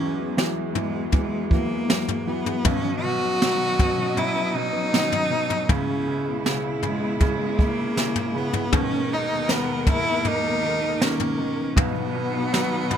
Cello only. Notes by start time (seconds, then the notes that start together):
Already playing: C#4
0.77 G#3
1.15 G#3
1.52 A#3
2.28 B3
2.67 C#4
3.04 F#4
4.18 E4
4.56 D#4
5.71 C#4
6.87 G#3
7.25 G#3
7.62 A#3
8.38 B3
8.75 C#4
9.13 D#4
9.51 B3
9.89 E4
10.27 D#4
11.02 C#4
11.78 B3